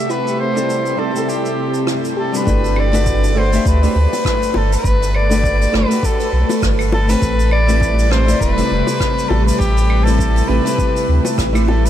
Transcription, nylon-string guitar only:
0.54 G3 A3 C4 E4 A4
0.96 G3 B3 C4 E4 A4
1.12 G3 B3 C4
1.16 E4 A4
2.32 G3 B3 D4 F#4 B4
2.45 A3 D4 F#4 B4
2.92 A3 D4 F#4 B4
3.35 A3 D4 F#4 B4
3.52 A3 D4 F#4 G4 E5
3.82 A3 D4 F#4 G4 B4
5.30 A3 D4 F#4 B4
5.72 A3 D4 F#4 B4
5.87 A3 F#4
5.92 G4 B4
7.07 A3 C4 G4 C5
7.67 A3 C4 E4 G4 B4
8.09 A3 C4 E4 G4 B4
8.26 A3 C4 E4 G4 D5
8.56 A3 C4 E4 G4 B4
10.05 A3 C4 E4 G4 B4
10.47 A3 C4 E4 G4 B4
10.62 A3 C4 E4
10.66 G4 B4
11.53 A3 C4 E4 G4 B4

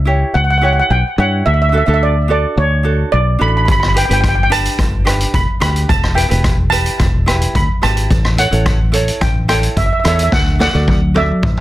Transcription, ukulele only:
0.05 E4 G4 C#5
0.61 E4 G4 C#5
1.18 E4 G4 C#5
1.72 D4 F#4 A4
1.86 D4 F#4 A4
2.28 D4 F#4 A4
2.83 D4 F#4 A4
3.39 D4 F#4 A4
3.94 D4 G4 B4
4.09 D4 G4 B4
4.50 D4 G4 B4
5.05 D4 G4 B4
5.60 D4 G4 B4
6.14 E4 G4 B4
6.28 E4 G4 B4
6.71 E4 G4 B4
7.26 E4 G4 B4
7.82 E4 G4 B4
8.37 E4 A4 C#5
8.51 E4 A4 C#5
8.92 E4 A4 C#5
9.48 E4 A4 C#5
10.04 E4 A4 C#5
10.59 F#4 A4 D5
10.73 F#4 A4 D5
11.14 F#4 A4 D5

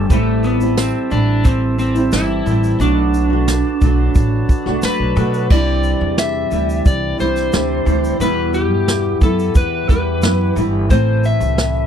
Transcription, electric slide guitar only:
Already playing: G3
0.12 A3
0.44 B3
0.78 C4
1.12 D4
1.45 C4
1.79 C4
2.13 E4
2.81 D4
4.85 B4
5.52 D5
6.19 E5
6.87 D5
7.20 C5
8.21 B4
8.54 G4
9.23 A4
9.57 B4
9.90 B4
10.91 C5
11.26 E5

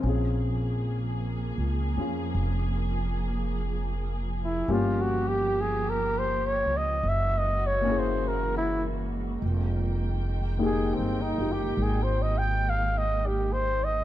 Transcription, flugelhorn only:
4.44 E4
4.72 F4
5.01 F#4
5.28 G4
5.61 G#4
5.90 A#4
6.19 C5
6.47 C#5
6.77 D#5
7.09 E5
7.38 D#5
7.67 C#5
7.99 C5
8.28 A#4
8.58 E4
10.65 G#4
10.94 C4
11.22 D#4
11.52 G4
11.83 G#4
12.03 C5
12.22 D#5
12.38 G5
12.70 F5
12.98 D#5
13.26 G4
13.53 C5
13.84 D#5

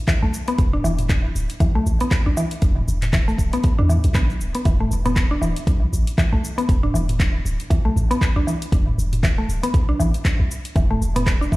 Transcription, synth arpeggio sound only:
0.08 E3
0.23 A3
0.48 B3
0.73 D4
0.84 E3
1.60 E3
1.75 A3
2.01 B3
2.26 D4
2.37 E3
3.13 E3
3.28 A3
3.53 B3
3.79 D4
3.89 E3
4.15 B3
4.55 B3
4.66 E3
4.80 A3
5.06 B3
5.31 D4
5.42 E3
6.18 E3
6.33 A3
6.58 B3
6.83 D4
6.94 E3
7.70 E3
7.85 A3
8.11 B3
8.36 D4
8.47 E3
9.23 E3
9.38 A3
9.63 B3
9.89 D4
9.99 E3
10.76 E3
10.91 A3
11.16 B3
11.41 D4
11.52 E3

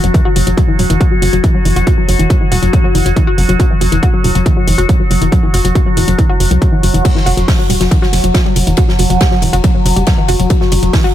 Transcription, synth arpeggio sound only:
0.04 F#3
0.14 E3
0.25 F#4
0.36 F#3
0.47 F#3
0.57 F#3
0.68 E3
0.79 F#3
0.90 E3
1.01 F#4
1.11 F#3
1.22 F#3
1.33 F#3
1.44 E3
1.55 F#3
1.65 E3
1.76 F#4
1.87 F#3
1.98 F#3
2.09 F#3
2.19 E3
2.30 F#3
2.41 E3
2.52 F#4
2.62 F#3
2.73 F#3
2.84 F#3
2.95 E3
3.06 F#3
3.16 E3
3.27 F#4
3.38 F#3
3.49 F#3
3.60 F#3
3.71 E3
3.81 F#3
3.92 E3
4.03 F#4
4.14 F#3
4.24 F#3
4.35 F#3
4.46 E3
4.57 F#3
4.67 E3
4.78 F#4
4.89 F#3
5.00 F#3
5.11 F#3
5.21 E3
5.32 F#3
5.43 E3
5.54 F#4
5.65 F#3
5.75 F#3
5.86 F#3
5.97 E3
6.08 F#3
6.19 E3
6.29 F#4
6.40 F#3
6.51 F#3
6.62 F#3
6.72 E3
6.83 F#3
6.94 E3
7.05 F#3
7.15 E3
7.26 F#4
7.37 F#3
7.48 F#3
7.59 F#3
7.70 G3
7.81 F#3
7.91 E3
8.02 F#4
8.13 F#3
8.24 F#3
8.35 F#3
8.45 G3
8.56 F#3
8.67 E3
8.77 F#4
8.88 F#3
8.99 F#3
9.10 F#3
9.21 G3
9.32 F#3
9.42 E3
9.53 F#4
9.64 F#3
9.75 F#3
9.85 F#3
9.96 G3
10.07 F#3
10.18 E3
10.29 F#4
10.40 F#3
10.50 F#3
10.61 F#3
10.72 G3
10.83 F#3
10.93 E3
11.04 F#4

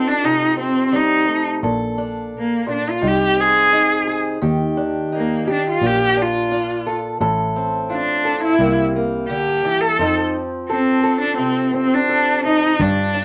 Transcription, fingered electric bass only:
Already playing: F2
1.63 A#1
3.03 C2
4.42 D#2
5.81 A#1
7.20 A1
8.59 C2
9.99 F2
12.79 G2

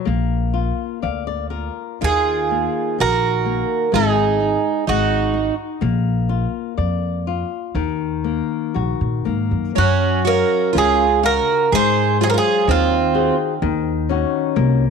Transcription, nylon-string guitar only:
0.05 A#3
0.54 F4
1.02 D5 F5
1.27 D5
1.50 F4 A#4
2.01 D#3
2.51 A#3
2.98 D#4
3.45 A#3
3.92 G#3
4.40 D#4
4.88 G#3
5.34 D#4
5.81 A#3
6.29 F4
6.77 D5
7.27 F4
7.75 D#3
8.24 A#3
8.74 F#4
9.25 A#3
9.75 F#3
10.26 C#4 A#4 F5
10.75 C#3
11.23 F#4 A#4 F5
11.72 G#3
12.20 F#3 G#4 C5
12.67 D#3
13.14 F#4 G#4 C5
13.62 D#3
14.09 C#4 D#4 F#4
14.56 A#3

